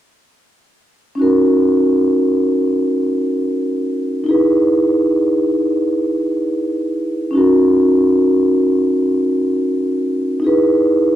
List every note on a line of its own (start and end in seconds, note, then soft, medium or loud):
1.15 4.21 C#4 medium
1.15 4.22 D#4 medium
1.19 4.23 F#4 medium
1.19 4.24 A#4 medium
4.24 7.29 D#4 medium
4.24 7.30 E4 medium
4.29 7.31 G#4 medium
4.29 7.32 B4 medium
7.31 10.36 C#4 medium
7.31 10.37 D#4 medium
7.35 10.39 F#4 medium
7.35 10.40 A#4 medium
10.40 11.16 D#4 medium
10.40 11.16 E4 medium
10.44 11.16 G#4 medium
10.44 11.16 B4 medium